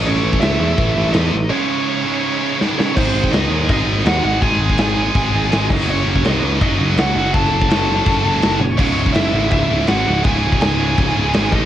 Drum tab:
CC |x---x---x---x---|----------------|x---x---x---x---|x---x---x---x-x-|
SD |-o--o------oo---|------------o-o-|-o--o------oo---|-o--o------oo---|
T1 |----------------|----------------|----------------|----------------|
BD |---o----o-------|----------------|o--o----o-------|o--o----o-----o-|

CC |x---x---x---x---|x---x---x---x---|x---x---x---x---|x---x---x---x---|
SD |----o------oo---|-o--o------oo---|-o--o------oo---|-o--o-------o---|
T1 |----------------|--------------o-|----------------|----------------|
BD |---o----o-------|o--o----o-------|o--o----o-------|o--o----o-----o-|